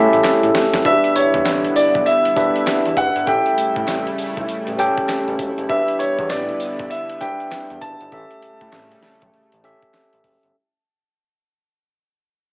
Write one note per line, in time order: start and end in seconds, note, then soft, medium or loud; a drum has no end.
0.00 0.82 C#3 medium
0.00 0.80 G3 medium
0.00 0.82 A3 medium
0.00 0.87 C#4 medium
0.00 0.81 E4 loud
0.00 0.86 E4 medium
0.00 0.86 G4 medium
0.00 0.86 A4 medium
0.00 0.51 E5 loud
0.00 0.86 E5 loud
0.13 0.21 A1 loud
0.13 closed hi-hat soft
0.24 snare medium
0.24 clap medium
0.24 closed hi-hat medium
0.43 0.51 A2 loud
0.43 closed hi-hat medium
0.55 snare loud
0.55 open hi-hat medium
0.74 0.82 F#1 medium
0.74 snare loud
0.74 closed hi-hat medium
0.85 0.98 E1 loud
0.85 3.25 D3 medium
0.85 8.08 G3 medium
0.85 3.25 B3 medium
0.85 1.72 D4 medium
0.85 10.51 E4 loud
0.85 0.93 F#4 medium
0.85 1.73 B4 medium
0.85 1.13 E5 loud
0.85 1.73 E5 medium
0.85 kick loud
0.85 closed hi-hat medium
0.92 1.76 G4 medium
1.04 closed hi-hat medium
1.15 1.23 E2 medium
1.15 1.72 C#5 medium
1.15 closed hi-hat medium
1.15 tambourine medium
1.34 1.42 E2 loud
1.34 kick loud
1.34 closed hi-hat medium
1.45 1.67 A1 loud
1.45 snare loud
1.45 clap medium
1.45 closed hi-hat medium
1.45 tambourine loud
1.65 closed hi-hat soft
1.76 2.07 D5 medium
1.76 open hi-hat medium
1.76 tambourine medium
1.95 2.03 B1 medium
1.95 kick loud
1.95 closed hi-hat medium
2.06 2.99 E5 medium
2.06 closed hi-hat medium
2.06 tambourine medium
2.25 2.29 E1 medium
2.25 closed hi-hat medium
2.36 2.50 E1 medium
2.36 3.02 D4 medium
2.36 3.02 G4 medium
2.36 3.03 B4 medium
2.36 3.03 E5 medium
2.36 kick medium
2.36 closed hi-hat medium
2.36 tambourine medium
2.56 closed hi-hat soft
2.67 snare loud
2.67 clap medium
2.67 closed hi-hat medium
2.67 tambourine loud
2.85 2.94 E2 medium
2.85 closed hi-hat medium
2.97 3.10 F#1 loud
2.97 3.28 F#5 loud
2.97 kick loud
2.97 closed hi-hat medium
2.97 tambourine medium
3.16 3.24 G1 medium
3.16 closed hi-hat medium
3.27 3.41 A1 loud
3.27 5.67 C#3 medium
3.27 5.67 A3 medium
3.27 4.15 C#4 medium
3.27 4.15 G4 medium
3.27 4.15 A4 medium
3.27 4.15 E5 medium
3.27 5.05 G5 loud
3.27 kick loud
3.27 closed hi-hat medium
3.46 closed hi-hat medium
3.58 3.65 A2 medium
3.58 closed hi-hat medium
3.58 tambourine medium
3.76 3.84 A2 medium
3.76 kick loud
3.76 closed hi-hat medium
3.87 4.09 A1 loud
3.87 snare loud
3.87 clap medium
3.87 closed hi-hat medium
3.87 tambourine loud
4.07 closed hi-hat soft
4.18 open hi-hat medium
4.18 tambourine medium
4.37 4.45 B1 medium
4.37 kick loud
4.37 closed hi-hat medium
4.49 4.56 A1 soft
4.49 closed hi-hat medium
4.49 tambourine medium
4.67 4.89 A1 medium
4.67 closed hi-hat medium
4.79 5.44 C#4 medium
4.79 5.45 G4 medium
4.79 5.45 A4 medium
4.79 5.45 G5 loud
4.79 closed hi-hat medium
4.79 tambourine medium
4.97 kick loud
4.97 closed hi-hat medium
5.09 snare loud
5.09 clap medium
5.09 closed hi-hat medium
5.09 tambourine loud
5.28 5.36 A1 medium
5.28 closed hi-hat medium
5.39 5.53 E1 medium
5.39 kick loud
5.39 closed hi-hat medium
5.39 tambourine medium
5.58 5.66 F#1 medium
5.58 closed hi-hat medium
5.69 5.83 E1 loud
5.69 8.09 D3 medium
5.69 8.09 B3 medium
5.69 6.57 D4 medium
5.69 6.57 G4 medium
5.69 6.57 B4 medium
5.69 6.00 E5 medium
5.69 6.58 E5 medium
5.69 kick loud
5.69 closed hi-hat medium
5.88 closed hi-hat medium
5.99 6.08 E2 medium
5.99 6.31 C#5 medium
5.99 closed hi-hat medium
5.99 tambourine medium
6.19 6.32 E2 loud
6.19 kick medium
6.19 closed hi-hat medium
6.29 6.52 A1 medium
6.29 6.86 D5 medium
6.29 snare loud
6.29 clap medium
6.29 closed hi-hat medium
6.29 tambourine medium
6.49 closed hi-hat soft
6.60 open hi-hat medium
6.60 tambourine medium
6.79 6.88 B1 medium
6.79 kick loud
6.79 closed hi-hat medium
6.90 7.22 E5 medium
6.90 closed hi-hat medium
6.90 tambourine medium
7.09 7.14 E1 soft
7.09 closed hi-hat medium
7.21 7.35 E1 loud
7.21 7.87 D4 medium
7.21 7.87 G4 medium
7.21 7.87 B4 medium
7.21 7.88 E5 medium
7.21 7.77 G5 loud
7.21 kick medium
7.21 closed hi-hat medium
7.21 tambourine medium
7.40 closed hi-hat soft
7.51 snare loud
7.51 clap medium
7.51 closed hi-hat medium
7.51 tambourine loud
7.70 7.78 E2 medium
7.70 closed hi-hat medium
7.81 7.95 F#1 loud
7.81 10.20 A5 loud
7.81 kick medium
7.81 closed hi-hat medium
7.81 tambourine medium
8.01 8.09 G1 loud
8.01 closed hi-hat medium
8.12 8.25 A1 loud
8.12 10.52 C#3 medium
8.12 10.52 G3 medium
8.12 10.52 A3 medium
8.12 8.99 C#4 medium
8.12 9.00 G4 medium
8.12 9.00 A4 medium
8.12 9.00 E5 medium
8.12 kick loud
8.12 closed hi-hat medium
8.31 closed hi-hat medium
8.42 8.50 A2 medium
8.42 closed hi-hat medium
8.61 8.69 A2 loud
8.61 kick medium
8.61 closed hi-hat medium
8.73 8.94 A1 loud
8.73 snare loud
8.73 clap medium
8.73 closed hi-hat medium
8.92 closed hi-hat soft
9.03 snare medium
9.03 open hi-hat medium
9.22 9.30 B1 medium
9.22 kick medium
9.22 closed hi-hat medium
9.34 closed hi-hat medium
9.52 9.74 A1 medium
9.52 closed hi-hat medium
9.64 10.29 C#4 medium
9.64 10.30 G4 medium
9.64 10.30 A4 medium
9.64 10.30 E5 loud
9.64 closed hi-hat medium
9.82 kick loud
9.82 closed hi-hat soft
9.94 snare loud
9.94 clap medium
9.94 closed hi-hat medium
10.13 10.21 A1 loud
10.13 closed hi-hat medium
10.24 kick loud
10.24 open hi-hat medium
10.43 10.52 G1 medium
10.43 closed hi-hat medium